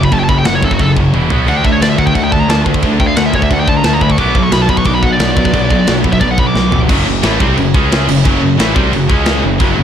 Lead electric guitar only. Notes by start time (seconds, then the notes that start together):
0.05 B5
0.12 A5
0.19 G5
0.24 A5
0.29 B5
0.38 G5
0.46 F#5
0.55 C#5
0.64 A4
0.73 F#4
0.81 A4
1.49 F#5
1.57 G5
1.64 E5
1.72 C#5
1.82 D5
1.90 E5
1.98 F#5
2.06 G5
2.15 F#5
2.24 G5
2.32 A5
2.41 A#5
2.50 A5
3.00 G5
3.07 F5
3.17 F#5
3.26 E5
3.35 C#5
3.44 E5
3.53 F#5
3.60 G5
3.69 A5
3.77 A#5
3.85 A5
3.93 A#5
4.02 B5
4.11 C#6
4.19 D6
4.44 C#6
4.53 B5
4.61 A5
4.69 B5
4.78 C#6
4.86 D6
4.95 B5
5.02 F#5
5.12 D5
6.13 E5
6.21 D5
6.31 F#5
6.39 B5
6.47 D6